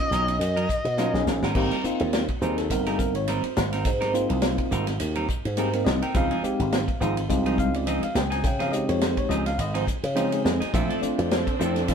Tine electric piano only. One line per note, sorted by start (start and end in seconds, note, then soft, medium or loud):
0.00 0.31 A#3 medium
0.00 0.31 C#4 medium
0.00 0.31 D#4 medium
0.00 0.31 F4 medium
0.97 1.08 A#3 medium
0.97 1.08 C#4 medium
0.97 1.08 D#4 medium
0.97 1.09 F4 medium
1.13 1.42 A#3 medium
1.13 1.42 C#4 medium
1.13 1.42 D#4 medium
1.13 1.42 G#4 medium
1.55 1.75 A#3 medium
1.55 1.75 C4 medium
1.55 1.75 D#4 medium
1.55 1.76 G4 medium
1.84 2.23 A#3 medium
1.84 2.23 C4 medium
1.84 2.23 D#4 medium
1.84 2.23 F4 medium
2.42 2.61 A#3 medium
2.42 2.62 C4 medium
2.42 2.62 D#4 medium
2.42 2.62 G#4 medium
2.42 2.57 C5 medium
2.58 2.70 A4 medium
2.70 3.47 A#3 medium
2.70 3.47 C4 medium
2.70 3.47 D#4 medium
2.70 2.86 A#4 medium
2.87 2.99 G#4 medium
2.98 3.14 A#4 medium
3.16 3.28 C#5 medium
3.29 4.97 C5 medium
4.13 4.90 A#3 medium
4.13 4.90 C4 medium
4.13 4.90 D#4 medium
4.13 4.91 F4 medium
5.57 5.68 A#3 medium
5.57 5.68 C4 medium
5.57 5.68 D#4 medium
5.57 5.73 G4 medium
5.57 5.68 G#4 medium
5.73 6.01 A#3 medium
5.73 6.02 C4 medium
5.73 6.02 D#4 medium
5.73 5.86 A#4 medium
5.85 6.01 D#5 medium
6.03 6.15 G5 medium
6.15 6.35 G#3 medium
6.15 6.35 C4 medium
6.15 6.35 D#4 medium
6.15 6.35 F4 medium
6.15 6.97 F5 medium
6.43 6.82 G#3 medium
6.43 6.82 C4 medium
6.43 6.83 D#4 medium
6.43 6.83 G4 medium
7.01 7.21 G#3 medium
7.01 7.21 C4 medium
7.01 7.21 D#4 medium
7.01 7.21 F4 medium
7.29 8.06 G#3 medium
7.29 8.06 C4 medium
7.29 8.06 D#4 medium
7.29 8.06 F4 medium
7.59 7.74 F5 medium
7.76 7.87 D5 medium
7.88 8.03 D#5 medium
8.03 8.16 F5 medium
8.15 8.31 G5 medium
8.32 8.44 G#5 medium
8.45 8.60 G5 medium
8.61 8.73 F5 medium
8.72 9.49 G#3 medium
8.72 9.49 C4 medium
8.72 9.50 D#4 medium
8.72 9.50 G4 medium
8.72 8.88 D#5 medium
8.89 9.01 C#5 medium
9.02 9.17 C5 medium
9.18 9.30 C#5 medium
9.29 9.45 D#5 medium
9.47 9.59 F5 medium
9.61 9.75 D#5 medium
9.76 9.83 C5 medium
10.15 10.26 G#3 medium
10.15 10.27 C4 medium
10.15 10.27 D#4 medium
10.15 10.27 F4 medium
10.32 10.60 G#3 medium
10.32 10.61 C4 medium
10.32 10.61 D#4 medium
10.32 10.61 G#4 medium
10.45 10.73 D#5 medium
10.73 10.93 A3 medium
10.73 10.93 C4 medium
10.73 10.94 D4 medium
10.73 10.94 F4 medium
10.73 11.02 E5 medium
11.01 11.41 A3 medium
11.01 11.41 C4 medium
11.01 11.41 D4 medium
11.01 11.41 F4 medium
11.01 11.30 D5 medium
11.32 11.94 C5 medium
11.59 11.79 A3 medium
11.59 11.80 C4 medium
11.59 11.80 D4 medium
11.59 11.80 E4 medium
11.87 11.94 A3 medium
11.87 11.94 C4 medium
11.87 11.94 D4 medium
11.87 11.94 F4 medium